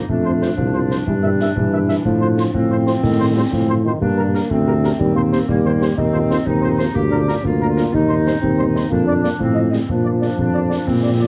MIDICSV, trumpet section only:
0, 0, Header, 1, 2, 480
1, 0, Start_track
1, 0, Key_signature, -2, "major"
1, 0, Tempo, 326619
1, 132, Time_signature, 6, 3, 24, 8
1, 16562, End_track
2, 0, Start_track
2, 0, Title_t, "Trumpet section"
2, 0, Program_c, 0, 61
2, 371, Note_on_c, 0, 72, 39
2, 458, Note_off_c, 0, 72, 0
2, 614, Note_on_c, 0, 72, 43
2, 700, Note_off_c, 0, 72, 0
2, 1090, Note_on_c, 0, 72, 40
2, 1177, Note_off_c, 0, 72, 0
2, 1327, Note_on_c, 0, 72, 41
2, 1416, Note_off_c, 0, 72, 0
2, 1807, Note_on_c, 0, 76, 40
2, 1895, Note_off_c, 0, 76, 0
2, 2065, Note_on_c, 0, 76, 41
2, 2149, Note_off_c, 0, 76, 0
2, 2540, Note_on_c, 0, 76, 45
2, 2625, Note_off_c, 0, 76, 0
2, 2773, Note_on_c, 0, 76, 39
2, 2860, Note_off_c, 0, 76, 0
2, 3248, Note_on_c, 0, 72, 42
2, 3336, Note_off_c, 0, 72, 0
2, 3502, Note_on_c, 0, 72, 45
2, 3587, Note_off_c, 0, 72, 0
2, 3991, Note_on_c, 0, 72, 43
2, 4074, Note_off_c, 0, 72, 0
2, 4218, Note_on_c, 0, 72, 43
2, 4304, Note_off_c, 0, 72, 0
2, 4700, Note_on_c, 0, 72, 45
2, 4786, Note_off_c, 0, 72, 0
2, 4955, Note_on_c, 0, 72, 48
2, 5038, Note_off_c, 0, 72, 0
2, 5424, Note_on_c, 0, 72, 49
2, 5509, Note_off_c, 0, 72, 0
2, 5681, Note_on_c, 0, 72, 44
2, 5762, Note_off_c, 0, 72, 0
2, 6144, Note_on_c, 0, 70, 46
2, 6229, Note_off_c, 0, 70, 0
2, 6384, Note_on_c, 0, 70, 51
2, 6469, Note_off_c, 0, 70, 0
2, 6868, Note_on_c, 0, 70, 53
2, 6952, Note_off_c, 0, 70, 0
2, 7108, Note_on_c, 0, 70, 50
2, 7193, Note_off_c, 0, 70, 0
2, 7576, Note_on_c, 0, 72, 52
2, 7663, Note_off_c, 0, 72, 0
2, 7827, Note_on_c, 0, 72, 50
2, 7911, Note_off_c, 0, 72, 0
2, 8311, Note_on_c, 0, 72, 52
2, 8395, Note_off_c, 0, 72, 0
2, 8544, Note_on_c, 0, 72, 53
2, 8629, Note_off_c, 0, 72, 0
2, 9009, Note_on_c, 0, 72, 54
2, 9098, Note_off_c, 0, 72, 0
2, 9256, Note_on_c, 0, 72, 52
2, 9344, Note_off_c, 0, 72, 0
2, 9734, Note_on_c, 0, 72, 57
2, 9822, Note_off_c, 0, 72, 0
2, 9978, Note_on_c, 0, 72, 53
2, 10065, Note_off_c, 0, 72, 0
2, 10450, Note_on_c, 0, 70, 53
2, 10539, Note_off_c, 0, 70, 0
2, 10706, Note_on_c, 0, 70, 53
2, 10791, Note_off_c, 0, 70, 0
2, 11181, Note_on_c, 0, 70, 58
2, 11267, Note_off_c, 0, 70, 0
2, 11405, Note_on_c, 0, 70, 52
2, 11494, Note_off_c, 0, 70, 0
2, 11891, Note_on_c, 0, 72, 54
2, 11979, Note_off_c, 0, 72, 0
2, 12136, Note_on_c, 0, 72, 49
2, 12223, Note_off_c, 0, 72, 0
2, 12624, Note_on_c, 0, 72, 53
2, 12710, Note_off_c, 0, 72, 0
2, 12870, Note_on_c, 0, 72, 49
2, 12954, Note_off_c, 0, 72, 0
2, 13336, Note_on_c, 0, 74, 44
2, 13423, Note_off_c, 0, 74, 0
2, 13564, Note_on_c, 0, 74, 46
2, 13653, Note_off_c, 0, 74, 0
2, 14030, Note_on_c, 0, 75, 43
2, 14123, Note_off_c, 0, 75, 0
2, 14261, Note_on_c, 0, 75, 42
2, 14356, Note_off_c, 0, 75, 0
2, 14764, Note_on_c, 0, 74, 42
2, 14853, Note_off_c, 0, 74, 0
2, 15002, Note_on_c, 0, 74, 43
2, 15092, Note_off_c, 0, 74, 0
2, 15481, Note_on_c, 0, 74, 40
2, 15571, Note_off_c, 0, 74, 0
2, 15708, Note_on_c, 0, 74, 39
2, 15801, Note_off_c, 0, 74, 0
2, 16211, Note_on_c, 0, 74, 39
2, 16298, Note_off_c, 0, 74, 0
2, 16463, Note_on_c, 0, 74, 40
2, 16548, Note_off_c, 0, 74, 0
2, 16562, End_track
0, 0, End_of_file